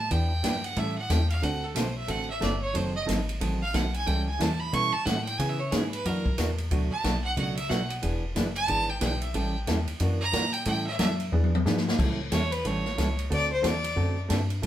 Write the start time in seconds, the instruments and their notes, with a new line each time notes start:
Already playing: fiddle A5
0.11 analog synth bass E2, hollow-body jazz guitar E3 B3 D4 G4, fiddle G5, kick, ride
0.43 analog synth bass G2, hollow-body jazz guitar E3 B3 D4 G4, kick, snare, hi-hat pedal, ride
0.64 fiddle F#5, ride
0.76 analog synth bass A2, hollow-body jazz guitar E3 G3 C#4 E4 A4, fiddle E5, kick, ride
0.98 fiddle F#5
1.10 analog synth bass E2, hollow-body jazz guitar E3 G3 C#4 E4 A4, fiddle G5, kick, snare, hi-hat pedal, ride
1.30 fiddle F5, ride
1.42 analog synth bass D2, hollow-body jazz guitar D3 A3 C4 F#4 A4, fiddle F#5, kick, ride
1.64 fiddle A4
1.75 analog synth bass B1, hollow-body jazz guitar D3 A3 C4 F#4 A4, fiddle C5, kick, snare, hi-hat pedal, ride
1.97 fiddle E5
2.08 analog synth bass A1, hollow-body jazz guitar D3 A3 C4 F#4 A4, fiddle F#5, kick, ride
2.30 fiddle E5
2.40 analog synth bass G1, hollow-body jazz guitar D3 A3 C4 F#4 A4, fiddle D5, kick, snare, hi-hat pedal, ride
2.61 fiddle C#5
2.74 analog synth bass F#1, hollow-body jazz guitar D#3 F#3 C4 D#4 A4, fiddle C5, kick, ride
2.96 fiddle D#5
3.06 analog synth bass G#1, hollow-body jazz guitar D#3 F#3 C4 D#4 A4, kick, snare, hi-hat pedal, ride
3.29 ride
3.41 analog synth bass A1, hollow-body jazz guitar D#3 F#3 C4 D#4 A4, kick, ride
3.62 fiddle F5
3.74 analog synth bass B1, hollow-body jazz guitar D#3 F#3 C4 D#4 A4, fiddle F#5, kick, snare, hi-hat pedal, ride
3.94 fiddle G#5, ride
4.06 analog synth bass C#2, hollow-body jazz guitar E3 G3 C#4 E4 A4, fiddle G5, kick, ride
4.28 fiddle G#5
4.39 analog synth bass E2, hollow-body jazz guitar E3 G3 C#4 E4 A4, fiddle A5, kick, snare, hi-hat pedal, ride
4.60 fiddle B5
4.73 analog synth bass B2, hollow-body jazz guitar E3 G3 C#4 E4 A4, fiddle C#6, kick, ride
4.92 analog synth bass B2, fiddle A5
5.05 analog synth bass A2, hollow-body jazz guitar E3 G3 C#4 E4 A4, fiddle F#5, kick, snare, hi-hat pedal, ride
5.24 fiddle G5, ride
5.38 analog synth bass C#3, hollow-body jazz guitar C#3 E3 B3 C#4 G#4, fiddle G#5, kick, ride
5.49 fiddle E5
5.60 fiddle C#5
5.71 analog synth bass G#2, hollow-body jazz guitar C#3 E3 B3 C#4 G#4, fiddle G#4, kick, snare, hi-hat pedal, ride
5.89 fiddle B4, ride
6.05 analog synth bass F#2, hollow-body jazz guitar E3 A#3 D4 F#4, fiddle A#4, kick, ride
6.26 kick
6.38 analog synth bass E2, hollow-body jazz guitar E3 A#3 D4 F#4, kick, snare, hi-hat pedal, ride
6.58 ride
6.71 analog synth bass D2, hollow-body jazz guitar B2 F#3 A3 D4 F#4, kick, ride
6.91 analog synth bass D2, fiddle A5
7.04 analog synth bass B1, hollow-body jazz guitar B2 F#3 A3 D4 F#4, kick, snare, hi-hat pedal, ride
7.24 fiddle F#5
7.37 analog synth bass C#2, hollow-body jazz guitar B2 F#3 A3 D4 F#4, fiddle F#5, kick, ride
7.56 fiddle E5, ride
7.69 analog synth bass B1, hollow-body jazz guitar B2 F#3 A3 D4 F#4, fiddle F#5, kick, snare, hi-hat pedal
7.90 ride
8.02 analog synth bass E1, hollow-body jazz guitar E3 B3 D4 G#4, kick, ride
8.35 analog synth bass F#1, hollow-body jazz guitar E3 B3 D4 G#4, kick, snare, hi-hat pedal, ride
8.55 fiddle A5, ride
8.68 analog synth bass G#1, hollow-body jazz guitar E3 B3 D4 G#4, kick, ride
8.89 fiddle G5
9.00 analog synth bass B1, hollow-body jazz guitar E3 B3 D4 G#4, fiddle G5, kick, snare, hi-hat pedal, ride
9.22 fiddle E5, ride
9.34 analog synth bass A1, hollow-body jazz guitar E3 G3 C#4 E4 A4, fiddle G5, kick, ride
9.67 analog synth bass E2, hollow-body jazz guitar E3 G3 C#4 E4 A4, kick, snare, hi-hat pedal, ride
9.88 analog synth bass E2, ride
10.00 analog synth bass F#2, hollow-body jazz guitar E3 A#3 D4 F#4, kick, ride
10.21 fiddle A#5
10.32 analog synth bass A#2, hollow-body jazz guitar E3 A#3 D4 F#4, kick, snare, hi-hat pedal, ride
10.53 fiddle G5, ride
10.65 analog synth bass A2, hollow-body jazz guitar E3 G3 C#4 E4 A4, fiddle G5, kick, ride
10.87 fiddle E5
10.99 analog synth bass F#2, hollow-body jazz guitar E3 G3 C#4 E4 A4, fiddle E5, kick, snare, hi-hat pedal, ride
11.20 ride
11.32 analog synth bass E2, hollow-body jazz guitar E3 B3 D4 G#4, high tom
11.44 high tom
11.55 high tom
11.66 analog synth bass G#2, hollow-body jazz guitar E3 B3 D4 G#4, snare, hi-hat pedal
11.77 snare
11.88 snare
11.98 analog synth bass C#2, hollow-body jazz guitar E3 G3 C#4 E4 A4, kick, crash
12.32 analog synth bass E2, hollow-body jazz guitar E3 G3 C#4 E4 A4, fiddle C#5, kick, snare, hi-hat pedal, ride
12.52 fiddle B4, ride
12.65 analog synth bass A1, hollow-body jazz guitar E3 G3 C#4 E4 A4, fiddle C#5, kick, ride
12.85 snare
12.97 analog synth bass C#2, hollow-body jazz guitar E3 G3 C#4 E4 A4, kick, snare, hi-hat pedal, ride
13.19 ride
13.30 analog synth bass D2, hollow-body jazz guitar D3 A3 C4 F#4 A4, fiddle D5, kick, ride
13.53 fiddle C5
13.62 analog synth bass E2, hollow-body jazz guitar D3 A3 C4 F#4 A4, kick, snare, hi-hat pedal, ride
13.67 fiddle D5
13.84 ride
13.96 analog synth bass F#2, hollow-body jazz guitar D3 A3 C4 F#4 A4, kick
14.28 analog synth bass G2, hollow-body jazz guitar D3 A3 C4 F#4 A4, kick, snare, hi-hat pedal, ride
14.50 ride
14.62 analog synth bass A2, hollow-body jazz guitar E3 G3 C#4 E4 A4, kick, ride